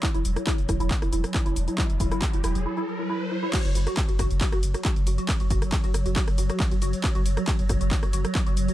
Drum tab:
CC |----------------|----------------|x---------------|----------------|
RD |----------------|----------------|x---x---x---x---|x---x---x---x---|
HH |xxoxxxoxxxoxxxox|xxoxxxox--------|xxoxxxoxxxoxxxox|xxoxxxoxxxoxxxoo|
SH |xxxxxxxxxxxxxxxx|xxxxxxxx--------|xxxxxxxxxxxxxxxx|xxxxxxxxxxxxxxxx|
CP |x---x---x---x---|x---x-----------|x---x---x---x---|x---x---x---x---|
SD |---r--r--r-r----|---r--r---------|---r--r--r-r----|---r--r--r-r----|
BD |o---o-o-o---o---|o-o-o-----------|o---o-o-o---o---|o-o-o---o---o---|

CC |----------------|
RD |x---x---x---x---|
HH |xxoxxxoxxxoxxxox|
SH |xxxxxxxxxxxxxxxx|
CP |x---x---x---x---|
SD |---r--r--r-r----|
BD |o---o-o-o---o---|